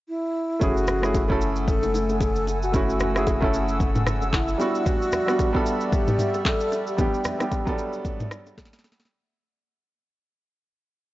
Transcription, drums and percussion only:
0.61 kick loud
0.61 low conga medium
0.61 shaker medium
0.77 shaker soft
0.87 cross-stick medium
0.87 low conga medium
0.87 shaker medium
1.03 cross-stick medium
1.03 shaker medium
1.14 kick loud
1.14 high bongo medium
1.14 shaker medium
1.30 kick medium
1.41 shaker medium
1.56 shaker medium
1.68 kick loud
1.68 low conga medium
1.68 shaker medium
1.83 low bongo medium
1.83 shaker soft
1.94 low bongo medium
1.94 shaker medium
2.09 high bongo medium
2.09 shaker soft
2.20 kick medium
2.20 high bongo medium
2.20 shaker medium
2.36 shaker medium
2.47 high bongo medium
2.47 shaker medium
2.63 shaker medium
2.74 kick loud
2.74 low conga medium
2.74 shaker medium
2.90 shaker soft
3.00 cross-stick medium
3.00 low conga medium
3.00 shaker medium
3.16 cross-stick medium
3.16 shaker medium
3.27 kick loud
3.27 high bongo medium
3.27 shaker medium
3.42 kick medium
3.54 shaker medium
3.68 shaker medium
3.80 kick loud
3.80 low conga medium
3.80 shaker medium
3.95 mid tom medium
3.95 low bongo medium
3.95 shaker soft
4.06 cross-stick loud
4.06 mid tom medium
4.06 low bongo medium
4.06 shaker medium
4.22 high bongo medium
4.22 shaker medium
4.33 kick medium
4.33 clap medium
4.33 high bongo medium
4.33 shaker medium
4.48 shaker medium
4.60 high bongo medium
4.60 shaker medium
4.75 shaker medium
4.86 kick loud
4.86 low conga medium
4.86 shaker medium
5.02 shaker soft
5.12 cross-stick medium
5.12 low conga medium
5.12 shaker medium
5.28 cross-stick medium
5.28 shaker medium
5.39 kick loud
5.39 high bongo medium
5.39 shaker medium
5.55 kick medium
5.66 shaker medium
5.81 shaker medium
5.92 kick loud
5.92 low conga medium
5.92 shaker medium
6.08 mid tom loud
6.08 low bongo medium
6.08 shaker soft
6.19 mid tom medium
6.19 low bongo medium
6.19 shaker medium
6.34 high bongo medium
6.34 shaker soft
6.45 kick medium
6.45 clap loud
6.45 high bongo medium
6.45 shaker medium
6.60 shaker medium
6.72 high bongo medium
6.72 shaker medium
6.87 shaker medium
6.98 kick loud
6.98 low conga medium
6.98 shaker medium
7.14 shaker soft
7.24 cross-stick medium
7.24 low bongo soft
7.24 low conga medium
7.24 shaker loud
7.40 cross-stick medium
7.40 low bongo medium
7.40 shaker medium
7.51 kick loud
7.51 high bongo medium
7.51 shaker medium
7.67 kick loud
7.67 shaker soft
7.78 shaker medium
7.93 shaker medium
8.05 kick loud
8.05 low conga medium
8.05 shaker medium
8.20 mid tom medium
8.20 low bongo medium
8.20 shaker soft
8.31 cross-stick loud
8.31 low bongo medium
8.31 shaker medium
8.46 high bongo medium
8.46 shaker medium
8.58 kick medium
8.58 snare medium
8.58 high bongo medium
8.58 shaker medium
8.65 snare medium
8.73 snare medium
8.73 shaker medium
8.79 snare medium
8.84 snare medium
8.84 high bongo medium
8.84 shaker medium
8.92 snare medium
8.99 snare loud
8.99 shaker medium
9.05 snare medium

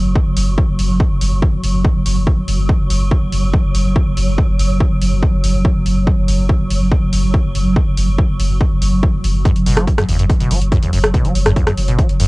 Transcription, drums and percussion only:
0.15 kick loud
0.37 open hi-hat loud
0.58 kick loud
0.79 open hi-hat medium
1.00 kick loud
1.21 open hi-hat loud
1.42 kick loud
1.64 open hi-hat medium
1.85 kick loud
2.06 open hi-hat loud
2.27 kick loud
2.48 open hi-hat medium
2.69 kick loud
2.90 open hi-hat loud
3.11 kick loud
3.32 open hi-hat medium
3.54 kick loud
3.75 open hi-hat loud
3.96 kick loud
4.17 open hi-hat medium
4.38 kick loud
4.59 open hi-hat loud
4.80 kick loud
5.02 open hi-hat medium
5.23 kick loud
5.44 open hi-hat loud
5.65 kick loud
5.86 open hi-hat medium
6.07 kick loud
6.28 open hi-hat loud
6.49 kick loud
6.71 open hi-hat medium
6.92 kick loud
7.13 open hi-hat loud
7.34 kick loud
7.55 open hi-hat medium
7.76 kick loud
7.97 open hi-hat loud
8.18 kick loud
8.40 open hi-hat medium
8.61 kick loud
8.82 open hi-hat loud
9.03 kick loud
9.24 open hi-hat medium
9.45 kick loud
9.45 closed hi-hat medium
9.56 closed hi-hat medium
9.66 open hi-hat loud
9.77 cross-stick medium
9.77 closed hi-hat medium
9.87 kick loud
9.87 closed hi-hat medium
9.98 cross-stick medium
9.98 closed hi-hat medium
10.09 open hi-hat medium
10.19 closed hi-hat medium
10.30 kick loud
10.30 closed hi-hat medium
10.40 closed hi-hat medium
10.51 open hi-hat loud
10.62 closed hi-hat medium
10.72 kick loud
10.72 closed hi-hat medium
10.83 closed hi-hat medium
10.93 open hi-hat medium
11.04 cross-stick medium
11.04 closed hi-hat medium
11.14 kick loud
11.14 closed hi-hat medium
11.25 closed hi-hat medium
11.35 open hi-hat loud
11.46 cross-stick medium
11.46 closed hi-hat medium
11.56 kick loud
11.56 closed hi-hat medium
11.67 cross-stick medium
11.67 closed hi-hat medium
11.78 open hi-hat medium
11.88 closed hi-hat medium
11.99 kick loud
11.99 closed hi-hat medium
12.09 closed hi-hat medium
12.20 open hi-hat loud

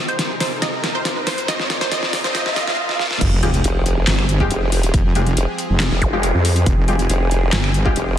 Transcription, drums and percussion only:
0.08 closed hi-hat soft
0.19 snare medium
0.19 closed hi-hat medium
0.40 snare medium
0.40 open hi-hat medium
0.62 snare medium
0.62 closed hi-hat medium
0.84 snare medium
0.84 closed hi-hat medium
1.05 snare medium
1.05 closed hi-hat medium
1.27 snare medium
1.27 open hi-hat medium
1.38 closed hi-hat medium
1.48 snare loud
1.48 closed hi-hat medium
1.60 snare medium
1.70 snare loud
1.70 closed hi-hat medium
1.81 snare medium
1.81 closed hi-hat soft
1.92 snare loud
1.92 closed hi-hat medium
2.03 snare medium
2.13 snare loud
2.13 open hi-hat medium
2.24 snare medium
2.35 snare loud
2.35 closed hi-hat medium
2.46 snare medium
2.56 snare loud
2.56 closed hi-hat medium
2.68 snare loud
2.89 snare medium
2.99 snare medium
3.11 snare medium
3.21 kick loud
3.21 closed hi-hat medium
3.21 crash loud
3.43 closed hi-hat medium
3.54 closed hi-hat soft
3.64 closed hi-hat medium
3.86 closed hi-hat medium
4.07 snare loud
4.07 clap loud
4.07 closed hi-hat medium
4.19 finger snap medium
4.29 closed hi-hat medium
4.40 kick medium
4.51 closed hi-hat medium
4.72 open hi-hat loud
4.83 closed hi-hat medium
4.94 kick loud
4.94 closed hi-hat medium
5.15 closed hi-hat medium
5.27 closed hi-hat soft
5.37 closed hi-hat medium
5.58 closed hi-hat medium
5.80 snare loud
5.80 clap loud
5.80 closed hi-hat medium
6.02 kick medium
6.02 closed hi-hat medium
6.23 closed hi-hat medium
6.45 open hi-hat medium
6.56 closed hi-hat medium
6.66 kick loud
6.66 closed hi-hat medium
6.88 closed hi-hat medium
6.99 closed hi-hat soft
7.10 closed hi-hat medium
7.31 closed hi-hat medium
7.53 snare loud
7.53 clap loud
7.53 closed hi-hat medium
7.64 finger snap medium
7.74 closed hi-hat medium
7.86 kick medium
7.96 closed hi-hat medium

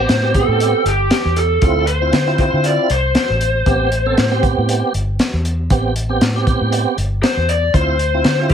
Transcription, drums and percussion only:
0.09 snare loud
0.09 closed hi-hat medium
0.34 kick medium
0.34 closed hi-hat medium
0.60 closed hi-hat medium
0.86 closed hi-hat medium
1.11 snare loud
1.11 closed hi-hat medium
1.36 closed hi-hat medium
1.62 kick loud
1.62 closed hi-hat medium
1.87 closed hi-hat medium
2.13 snare loud
2.13 closed hi-hat medium
2.38 kick medium
2.38 closed hi-hat medium
2.64 closed hi-hat medium
2.90 closed hi-hat medium
3.15 snare loud
3.15 closed hi-hat medium
3.41 closed hi-hat medium
3.66 kick loud
3.66 closed hi-hat medium
3.92 closed hi-hat medium
4.17 snare loud
4.17 closed hi-hat medium
4.43 kick medium
4.43 closed hi-hat medium
4.69 closed hi-hat medium
4.94 closed hi-hat medium
5.19 snare loud
5.19 closed hi-hat medium
5.45 closed hi-hat medium
5.70 kick loud
5.70 closed hi-hat medium
5.96 closed hi-hat medium
6.21 snare loud
6.21 closed hi-hat medium
6.47 kick medium
6.47 closed hi-hat medium
6.72 closed hi-hat medium
6.98 closed hi-hat medium
7.23 snare loud
7.23 closed hi-hat medium
7.49 closed hi-hat medium
7.74 kick loud
7.74 closed hi-hat medium
7.99 closed hi-hat medium
8.24 snare loud
8.24 closed hi-hat medium
8.49 kick medium
8.49 closed hi-hat medium

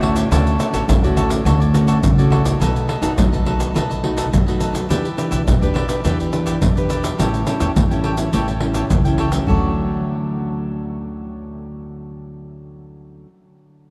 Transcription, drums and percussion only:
0.03 pandeiro medium
0.16 pandeiro medium
0.16 shaker medium
0.16 surdo soft
0.32 pandeiro medium
0.32 shaker medium
0.32 surdo medium
0.47 pandeiro soft
0.47 shaker soft
0.60 pandeiro medium
0.60 shaker medium
0.74 pandeiro medium
0.74 shaker medium
0.74 surdo soft
0.89 pandeiro medium
0.89 shaker medium
0.89 surdo loud
1.04 pandeiro soft
1.04 shaker soft
1.17 pandeiro medium
1.17 shaker medium
1.17 surdo soft
1.30 pandeiro medium
1.30 shaker medium
1.46 pandeiro medium
1.46 shaker medium
1.46 surdo medium
1.62 pandeiro soft
1.62 shaker soft
1.62 surdo soft
1.74 pandeiro medium
1.74 shaker medium
1.88 pandeiro medium
1.88 shaker medium
1.88 surdo soft
2.03 pandeiro medium
2.03 shaker medium
2.03 surdo loud
2.19 pandeiro soft
2.19 shaker soft
2.32 pandeiro medium
2.46 pandeiro medium
2.46 shaker medium
2.46 surdo soft
2.62 pandeiro medium
2.62 shaker medium
2.62 surdo medium
2.76 pandeiro soft
2.76 shaker soft
2.89 pandeiro medium
3.03 pandeiro medium
3.03 shaker medium
3.03 surdo soft
3.18 pandeiro medium
3.18 shaker medium
3.18 surdo loud
3.33 pandeiro soft
3.33 shaker soft
3.46 pandeiro medium
3.60 pandeiro medium
3.60 shaker medium
3.76 pandeiro medium
3.76 shaker medium
3.76 surdo medium
3.91 pandeiro soft
3.91 shaker soft
3.91 surdo soft
4.04 pandeiro medium
4.18 pandeiro medium
4.18 shaker medium
4.18 surdo soft
4.33 pandeiro medium
4.33 shaker medium
4.33 surdo medium
4.48 pandeiro soft
4.48 shaker soft
4.61 pandeiro medium
4.61 shaker medium
4.75 pandeiro medium
4.75 shaker medium
4.75 surdo soft
4.90 pandeiro medium
4.90 shaker medium
4.90 surdo medium
5.05 pandeiro soft
5.05 shaker soft
5.18 pandeiro medium
5.18 shaker medium
5.32 pandeiro medium
5.32 shaker medium
5.32 surdo soft
5.48 pandeiro medium
5.48 shaker medium
5.48 surdo medium
5.63 pandeiro soft
5.63 shaker soft
5.76 pandeiro medium
5.89 pandeiro medium
5.89 shaker medium
6.05 pandeiro medium
6.05 shaker medium
6.05 surdo soft
6.20 pandeiro soft
6.20 shaker soft
6.20 surdo soft
6.33 pandeiro medium
6.33 shaker medium
6.47 pandeiro medium
6.47 shaker medium
6.47 surdo soft
6.62 pandeiro medium
6.62 shaker medium
6.62 surdo medium
6.77 pandeiro soft
6.77 shaker soft
6.90 pandeiro medium
6.90 shaker medium
7.04 pandeiro medium
7.04 shaker medium
7.04 surdo soft
7.20 pandeiro medium
7.20 shaker medium
7.20 surdo medium
7.34 pandeiro soft
7.34 shaker soft
7.47 pandeiro medium
7.47 shaker medium
7.60 pandeiro medium
7.60 shaker medium
7.60 surdo soft
7.76 pandeiro medium
7.76 shaker medium
7.76 surdo medium
7.91 pandeiro soft
7.91 shaker soft
8.04 pandeiro medium
8.17 pandeiro medium
8.17 shaker medium
8.33 pandeiro medium
8.33 shaker medium
8.33 surdo soft
8.48 pandeiro soft
8.48 shaker soft
8.48 surdo soft
8.60 pandeiro medium
8.74 pandeiro medium
8.74 shaker medium
8.74 surdo soft
8.90 pandeiro medium
8.90 shaker medium
8.90 surdo medium
9.05 pandeiro soft
9.05 shaker soft
9.18 pandeiro medium
9.32 pandeiro medium
9.32 shaker medium
9.32 surdo soft
9.47 surdo medium

